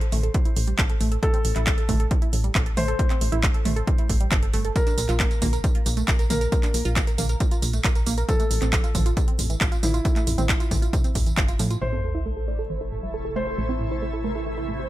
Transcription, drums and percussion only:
0.01 closed hi-hat
0.12 open hi-hat, mid tom
0.23 closed hi-hat
0.34 kick, closed hi-hat
0.45 closed hi-hat
0.56 open hi-hat
0.67 closed hi-hat
0.79 kick, clap, closed hi-hat
0.90 closed hi-hat
1.01 open hi-hat
1.12 closed hi-hat
1.23 kick, closed hi-hat
1.34 closed hi-hat
1.45 open hi-hat
1.56 clap, closed hi-hat
1.67 kick, clap, closed hi-hat
1.78 closed hi-hat
1.89 kick, open hi-hat, mid tom
2.00 closed hi-hat
2.11 kick, closed hi-hat
2.22 closed hi-hat
2.33 open hi-hat
2.44 closed hi-hat
2.55 kick, clap, closed hi-hat
2.66 closed hi-hat
2.77 open hi-hat, mid tom
2.88 closed hi-hat
2.99 kick, closed hi-hat
3.10 clap, closed hi-hat
3.21 open hi-hat
3.32 closed hi-hat
3.43 kick, clap, closed hi-hat
3.54 closed hi-hat
3.65 open hi-hat, mid tom
3.76 closed hi-hat
3.87 kick, closed hi-hat
3.98 closed hi-hat
4.09 kick, open hi-hat
4.20 closed hi-hat
4.32 kick, clap, closed hi-hat
4.43 closed hi-hat
4.54 open hi-hat
4.65 closed hi-hat
4.76 kick, closed hi-hat, tambourine
4.87 closed hi-hat, tambourine
4.98 open hi-hat, tambourine
5.09 clap, closed hi-hat, tambourine
5.20 kick, clap, closed hi-hat, tambourine
5.31 closed hi-hat, tambourine
5.42 kick, open hi-hat, mid tom, tambourine
5.53 closed hi-hat, tambourine
5.64 kick, closed hi-hat, tambourine
5.75 closed hi-hat
5.86 open hi-hat, tambourine
5.97 closed hi-hat, tambourine
6.08 kick, clap, closed hi-hat, tambourine
6.19 closed hi-hat, tambourine
6.30 open hi-hat, mid tom, tambourine
6.41 closed hi-hat, tambourine
6.52 kick, closed hi-hat, tambourine
6.63 clap, closed hi-hat, tambourine
6.74 open hi-hat, tambourine
6.85 closed hi-hat, tambourine
6.96 kick, clap, closed hi-hat, tambourine
7.07 closed hi-hat, tambourine
7.18 open hi-hat, mid tom, tambourine
7.29 closed hi-hat, tambourine
7.40 kick, closed hi-hat, tambourine
7.51 closed hi-hat, tambourine
7.62 open hi-hat, tambourine
7.73 closed hi-hat, tambourine
7.84 kick, clap, closed hi-hat, tambourine
7.95 closed hi-hat, tambourine
8.06 open hi-hat, tambourine
8.18 closed hi-hat, tambourine
8.29 kick, closed hi-hat, tambourine
8.40 closed hi-hat, tambourine
8.51 open hi-hat, tambourine
8.62 clap, closed hi-hat, tambourine
8.73 kick, clap, closed hi-hat, tambourine
8.84 closed hi-hat, tambourine
8.95 kick, open hi-hat, mid tom, tambourine
9.06 closed hi-hat, tambourine
9.17 kick, closed hi-hat, tambourine
9.28 closed hi-hat
9.39 open hi-hat, tambourine
9.50 closed hi-hat, tambourine
9.61 kick, clap, closed hi-hat, tambourine
9.72 closed hi-hat, tambourine
9.83 open hi-hat, mid tom, tambourine
9.94 closed hi-hat, tambourine
10.05 kick, closed hi-hat, tambourine
10.16 clap, closed hi-hat, tambourine
10.27 open hi-hat, tambourine
10.38 closed hi-hat, mid tom, tambourine
10.49 kick, clap, closed hi-hat, tambourine
10.60 closed hi-hat, tambourine
10.71 kick, open hi-hat, mid tom, tambourine
10.82 closed hi-hat, tambourine
10.93 kick, closed hi-hat, tambourine
11.04 closed hi-hat, tambourine
11.15 kick, open hi-hat, tambourine
11.26 closed hi-hat, tambourine
11.37 kick, clap, closed hi-hat, tambourine
11.48 closed hi-hat, tambourine
11.59 open hi-hat, tambourine
11.70 closed hi-hat, tambourine

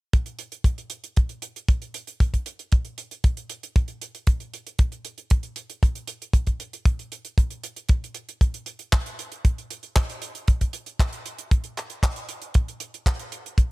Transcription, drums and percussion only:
0.13 kick, closed hi-hat
0.26 closed hi-hat
0.39 closed hi-hat
0.52 closed hi-hat
0.64 kick, closed hi-hat
0.78 closed hi-hat
0.90 closed hi-hat
1.04 closed hi-hat
1.16 kick, closed hi-hat
1.29 closed hi-hat
1.42 closed hi-hat
1.56 closed hi-hat
1.68 kick, closed hi-hat
1.82 closed hi-hat
1.94 closed hi-hat
2.07 closed hi-hat
2.20 kick, closed hi-hat
2.34 kick, closed hi-hat
2.46 closed hi-hat
2.59 closed hi-hat
2.72 kick, closed hi-hat
2.85 closed hi-hat
2.98 closed hi-hat
3.11 closed hi-hat
3.24 kick, closed hi-hat
3.37 closed hi-hat
3.50 closed hi-hat
3.63 closed hi-hat
3.76 kick, closed hi-hat
3.88 closed hi-hat
4.02 closed hi-hat
4.15 closed hi-hat
4.27 kick, closed hi-hat
4.40 closed hi-hat
4.54 closed hi-hat
4.67 closed hi-hat
4.79 kick, closed hi-hat
4.92 closed hi-hat
5.05 closed hi-hat
5.18 closed hi-hat
5.30 kick, closed hi-hat
5.43 closed hi-hat
5.56 closed hi-hat
5.70 closed hi-hat
5.83 kick, closed hi-hat
5.95 closed hi-hat
6.07 closed hi-hat
6.22 closed hi-hat
6.33 kick, closed hi-hat
6.47 kick, closed hi-hat
6.60 closed hi-hat
6.73 closed hi-hat
6.85 kick, closed hi-hat
6.99 closed hi-hat
7.12 closed hi-hat
7.25 closed hi-hat
7.38 kick, closed hi-hat
7.50 closed hi-hat
7.63 closed hi-hat
7.76 closed hi-hat
7.89 kick, closed hi-hat
8.04 closed hi-hat
8.14 closed hi-hat
8.29 closed hi-hat
8.41 kick, closed hi-hat
8.54 closed hi-hat
8.66 closed hi-hat
8.79 closed hi-hat
8.92 kick, clap, closed hi-hat
9.06 closed hi-hat
9.19 closed hi-hat
9.32 closed hi-hat
9.45 kick, closed hi-hat
9.58 closed hi-hat
9.70 closed hi-hat
9.83 closed hi-hat
9.96 kick, clap, closed hi-hat
10.10 closed hi-hat
10.22 closed hi-hat
10.35 closed hi-hat
10.48 kick, closed hi-hat
10.61 kick, closed hi-hat
10.73 closed hi-hat
10.86 closed hi-hat
11.00 kick, clap, closed hi-hat
11.13 closed hi-hat
11.26 closed hi-hat
11.38 closed hi-hat
11.51 kick, closed hi-hat
11.64 closed hi-hat
11.77 clap, closed hi-hat
11.90 closed hi-hat
12.03 kick, clap, closed hi-hat
12.16 closed hi-hat
12.29 closed hi-hat
12.42 closed hi-hat
12.54 kick, closed hi-hat
12.68 closed hi-hat
12.80 closed hi-hat
12.94 closed hi-hat
13.06 kick, clap, closed hi-hat
13.19 closed hi-hat
13.32 closed hi-hat
13.46 closed hi-hat
13.58 kick, closed hi-hat

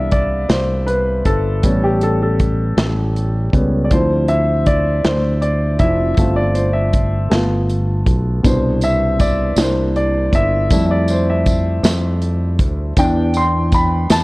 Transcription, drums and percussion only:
0.11 kick, closed hi-hat
0.49 snare, closed hi-hat
0.88 closed hi-hat
1.25 kick, closed hi-hat
1.63 kick, closed hi-hat
2.01 closed hi-hat
2.40 kick, closed hi-hat
2.78 snare, closed hi-hat
3.16 closed hi-hat
3.53 kick, closed hi-hat
3.91 kick, closed hi-hat
4.28 closed hi-hat
4.66 kick, closed hi-hat
5.05 snare, closed hi-hat
5.42 closed hi-hat
5.79 kick, closed hi-hat
6.17 kick, closed hi-hat
6.55 closed hi-hat
6.93 kick, closed hi-hat
7.31 snare, closed hi-hat
7.69 closed hi-hat
8.06 kick, closed hi-hat
8.44 kick, closed hi-hat, tambourine
8.81 closed hi-hat, tambourine
9.20 kick, closed hi-hat, tambourine
9.57 snare, closed hi-hat, tambourine
9.96 closed hi-hat
10.33 kick, closed hi-hat
10.71 kick, closed hi-hat, tambourine
11.08 closed hi-hat, tambourine
11.46 kick, closed hi-hat, tambourine
11.84 snare, closed hi-hat, tambourine
12.22 closed hi-hat
12.59 kick, closed hi-hat
12.97 kick, closed hi-hat, tambourine
13.34 closed hi-hat, tambourine
13.72 kick, closed hi-hat, tambourine
14.10 snare, closed hi-hat, tambourine

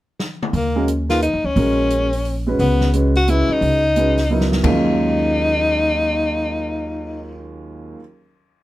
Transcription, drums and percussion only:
0.20 snare
0.42 mid tom
0.54 open hi-hat
0.88 closed hi-hat
1.10 snare, open hi-hat
1.22 closed hi-hat
1.56 open hi-hat
1.90 closed hi-hat
2.13 open hi-hat
2.25 open hi-hat
2.60 open hi-hat
2.81 snare
2.93 closed hi-hat
3.15 open hi-hat
3.28 closed hi-hat
3.62 open hi-hat
3.96 closed hi-hat
4.17 snare, open hi-hat
4.41 snare
4.52 snare
4.64 kick, floor tom, ride bell

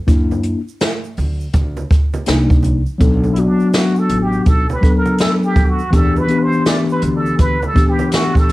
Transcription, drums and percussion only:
0.08 kick, closed hi-hat, shaker
0.31 high conga, shaker
0.43 closed hi-hat, shaker
0.68 shaker
0.81 snare, closed hi-hat, shaker
1.04 shaker
1.17 open hi-hat, low conga, shaker
1.41 shaker
1.53 kick, closed hi-hat, high conga, shaker
1.77 high conga, shaker
1.91 kick, closed hi-hat, shaker
2.14 high conga, shaker
2.26 snare, closed hi-hat, low conga, shaker
2.50 kick, shaker
2.63 closed hi-hat, high conga, low conga, shaker
2.86 shaker
3.00 kick, closed hi-hat, shaker
3.24 high conga, shaker
3.36 closed hi-hat, shaker
3.60 shaker
3.73 snare, closed hi-hat, shaker
3.96 shaker
4.09 closed hi-hat, low conga, shaker
4.33 shaker
4.46 kick, closed hi-hat, high conga, shaker
4.70 high conga, shaker
4.83 kick, closed hi-hat, shaker
5.06 high conga, shaker
5.18 snare, closed hi-hat, low conga, shaker
5.43 shaker
5.56 kick, closed hi-hat, low conga, shaker
5.79 shaker
5.93 kick, closed hi-hat, shaker
6.16 high conga, shaker
6.28 closed hi-hat, shaker
6.52 shaker
6.66 snare, closed hi-hat, shaker
6.89 shaker
7.01 closed hi-hat, low conga, shaker
7.26 shaker
7.39 kick, closed hi-hat, high conga, shaker
7.62 high conga, shaker
7.76 kick, closed hi-hat, shaker
7.99 high conga, shaker
8.11 snare, closed hi-hat, low conga, shaker
8.35 kick, shaker
8.49 closed hi-hat, low conga, shaker

